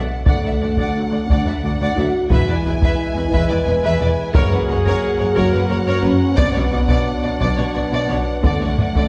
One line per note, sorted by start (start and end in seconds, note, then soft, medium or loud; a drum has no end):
0.00 0.26 F#5 soft
0.26 0.34 D2 medium
0.26 1.28 A3 medium
0.26 0.41 D5 medium
0.26 2.27 F#5 medium
0.26 0.44 F#5 medium
0.26 taiko medium
0.42 0.51 D2 soft
0.42 0.50 D5 soft
0.42 0.52 E5 soft
0.60 0.67 D2 soft
0.60 0.68 D2 soft
0.60 0.68 D5 soft
0.60 0.69 F#5 soft
0.77 0.84 D2 medium
0.77 0.94 D5 medium
0.77 0.95 F#5 medium
0.77 taiko medium
0.95 1.07 D3 medium
0.95 1.07 F#3 medium
1.11 1.18 D2 soft
1.11 1.19 D5 medium
1.11 1.21 F#5 soft
1.28 1.36 D2 medium
1.28 1.37 D2 medium
1.28 1.96 D4 medium
1.28 1.46 D5 medium
1.28 1.46 F#5 medium
1.28 taiko medium
1.46 1.53 D2 soft
1.46 1.54 D5 soft
1.46 1.54 E5 soft
1.63 1.70 D2 soft
1.63 1.71 D5 medium
1.63 1.71 F#5 soft
1.80 1.87 D2 medium
1.80 1.96 D5 medium
1.80 1.97 F#5 medium
1.96 2.04 D2 medium
1.96 2.09 D3 medium
1.96 2.09 F#3 medium
1.96 2.30 F#4 medium
1.96 2.04 D5 soft
1.96 2.05 E5 medium
2.29 2.38 E1 medium
2.29 2.37 E2 medium
2.29 4.30 E3 medium
2.29 4.30 G#3 medium
2.29 3.31 E4 medium
2.29 2.47 B4 medium
2.29 2.47 E5 medium
2.29 4.31 G#5 medium
2.29 taiko medium
2.47 2.54 E2 medium
2.47 2.55 B4 soft
2.47 2.55 D5 soft
2.65 2.72 E1 medium
2.65 2.72 E2 medium
2.65 2.73 B4 soft
2.65 2.72 E5 medium
2.81 2.89 E2 medium
2.81 2.98 B4 medium
2.81 2.99 E5 medium
2.81 taiko medium
3.16 3.23 E2 medium
3.16 3.24 B4 medium
3.16 3.23 E5 soft
3.30 3.40 E1 medium
3.30 3.40 E2 medium
3.30 4.31 B4 medium
3.30 3.49 B4 medium
3.30 3.49 E5 medium
3.30 taiko medium
3.50 3.57 E2 medium
3.50 3.57 B4 soft
3.50 3.57 D5 medium
3.67 3.74 E1 medium
3.67 3.74 E2 medium
3.67 3.74 B4 medium
3.67 3.74 E5 medium
3.83 3.91 E2 medium
3.83 3.99 B4 medium
3.83 3.99 E5 medium
4.01 4.08 E1 medium
4.01 4.07 E2 medium
4.01 4.08 B4 medium
4.01 4.08 D5 medium
4.34 4.41 F#1 medium
4.34 4.41 F#2 medium
4.34 8.40 F#3 medium
4.34 6.37 A#3 medium
4.34 5.33 G#4 loud
4.34 4.50 A#4 medium
4.34 4.51 C#5 medium
4.34 8.39 F#5 medium
4.34 taiko medium
4.51 4.59 F#2 medium
4.51 4.58 A#4 medium
4.51 4.60 B4 medium
4.68 4.75 F#1 medium
4.68 4.76 F#2 medium
4.68 4.75 A#4 medium
4.68 4.77 C#5 medium
4.84 4.92 F#2 medium
4.84 5.00 A#4 medium
4.84 5.01 C#5 medium
4.84 taiko medium
5.18 5.26 F#2 medium
5.18 5.25 A#4 medium
5.18 5.26 C#5 medium
5.34 5.43 F#1 medium
5.34 5.43 F#2 medium
5.34 6.02 F#4 medium
5.34 5.51 A#4 medium
5.34 5.51 C#5 medium
5.34 taiko medium
5.53 5.60 F#2 medium
5.53 5.60 A#4 medium
5.53 5.59 B4 medium
5.69 5.76 F#1 medium
5.69 5.77 F#2 medium
5.69 5.76 A#4 medium
5.69 5.76 C#5 medium
5.86 5.93 F#2 medium
5.86 6.01 A#4 medium
5.86 6.03 C#5 medium
6.02 6.10 F#1 medium
6.02 6.11 F#2 medium
6.02 6.36 C#4 medium
6.02 6.09 A#4 medium
6.02 6.09 B4 medium
6.35 6.45 B1 medium
6.35 6.45 B2 medium
6.35 7.21 B3 loud
6.35 6.52 D5 medium
6.35 taiko medium
6.39 9.08 D4 medium
6.53 6.62 B2 medium
6.53 6.60 C#5 medium
6.53 6.60 D5 medium
6.72 6.79 B1 medium
6.72 6.79 B2 medium
6.72 6.78 D5 soft
6.72 6.78 D5 medium
6.88 6.96 B2 medium
6.88 7.04 D5 medium
6.88 taiko medium
7.23 7.30 B2 medium
7.23 7.30 D5 medium
7.38 7.47 B1 medium
7.38 7.47 B2 medium
7.38 8.41 B3 medium
7.38 7.56 D5 medium
7.38 taiko medium
7.57 7.65 B2 medium
7.57 7.64 C#5 medium
7.57 7.64 D5 soft
7.74 7.83 B1 medium
7.74 7.82 B2 medium
7.74 7.81 D5 medium
7.74 7.82 D5 medium
7.92 7.99 B2 medium
7.92 8.08 D5 medium
8.09 8.17 B1 medium
8.09 8.16 B2 medium
8.09 8.16 C#5 medium
8.09 8.17 D5 soft
8.43 8.52 D2 medium
8.43 8.50 D3 medium
8.43 9.08 F#3 medium
8.43 9.08 A3 medium
8.43 8.60 D5 medium
8.43 9.08 F#5 medium
8.43 taiko medium
8.61 8.68 D3 soft
8.61 8.68 C#5 soft
8.61 8.70 D5 soft
8.78 8.86 D2 soft
8.78 8.85 D3 soft
8.78 8.86 D5 soft
8.78 8.87 D5 soft
8.78 taiko low-mid soft
8.96 9.03 D3 medium
8.96 9.08 D5 medium
8.96 taiko medium